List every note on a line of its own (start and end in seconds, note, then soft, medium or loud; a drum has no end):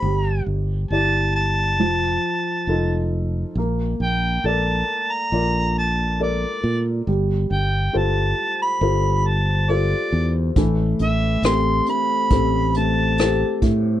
0.00 0.40 G1 medium
0.00 1.75 G3 soft
0.00 0.43 B5 medium
0.46 0.84 G1 medium
0.90 1.79 G1 medium
0.90 1.77 E4 soft
0.90 1.77 G4 soft
0.90 1.77 D5 soft
0.90 1.32 A5 medium
1.35 3.09 A5 medium
1.79 2.17 F1 medium
1.79 3.53 F3 soft
2.67 3.43 F1 medium
2.67 3.54 D#4 soft
2.67 3.54 F4 soft
2.67 3.55 A4 soft
3.55 3.94 A#1 medium
3.55 7.04 A#3 soft
4.00 4.38 A#1 medium
4.00 4.47 G5 medium
4.44 4.82 A#1 medium
4.44 5.30 A4 soft
4.44 5.30 A#4 soft
4.44 5.30 D5 soft
4.44 5.14 A5 medium
5.12 5.77 A#5 medium
5.32 6.44 A#1 medium
5.32 6.17 F4 soft
5.32 6.18 A#4 soft
5.32 6.18 D5 soft
5.79 6.18 A5 medium
6.20 7.05 A4 soft
6.20 7.05 A#4 soft
6.20 7.05 D5 soft
6.20 6.83 D5 medium
6.64 7.01 A#2 medium
7.07 7.44 G1 medium
7.07 10.52 G3 medium
7.51 7.88 G1 medium
7.51 7.99 G5 medium
7.93 8.32 G1 medium
7.93 8.79 F4 soft
7.93 8.79 G4 soft
7.93 8.79 A4 soft
7.93 8.79 C5 soft
7.93 8.61 A5 medium
8.62 9.29 B5 medium
8.81 9.93 G1 medium
8.81 9.66 F4 soft
8.81 9.67 G4 soft
8.81 9.66 A4 soft
8.81 9.67 C5 soft
9.27 9.72 A5 medium
9.69 10.54 F4 soft
9.69 10.54 G4 soft
9.69 10.54 A4 soft
9.69 10.54 C5 soft
9.69 10.35 D5 medium
10.12 10.50 E2 medium
10.56 10.93 A1 medium
10.56 14.00 E3 medium
10.56 14.00 A3 medium
10.56 kick medium
10.56 closed hi-hat medium
10.99 11.37 A1 medium
10.99 11.87 A3 soft
10.99 11.42 E5 medium
10.99 closed hi-hat soft
11.42 11.80 A1 medium
11.42 12.31 C4 medium
11.42 12.29 G4 soft
11.42 12.29 A4 soft
11.42 12.29 C5 soft
11.42 11.85 C6 medium
11.42 cross-stick medium
11.42 closed hi-hat medium
11.86 12.75 A3 soft
11.86 12.72 B5 medium
11.86 closed hi-hat soft
12.30 13.43 A1 medium
12.30 14.00 C4 medium
12.30 13.16 G4 soft
12.30 13.17 A4 soft
12.30 13.17 C5 soft
12.30 kick medium
12.30 closed hi-hat medium
12.74 13.62 A3 soft
12.74 13.59 A5 medium
12.74 closed hi-hat soft
13.18 14.00 G4 soft
13.18 14.00 G4 medium
13.18 14.00 A4 soft
13.18 14.00 C5 medium
13.18 cross-stick medium
13.18 closed hi-hat medium
13.62 14.00 A2 medium
13.62 14.00 A3 medium
13.62 kick medium
13.62 closed hi-hat soft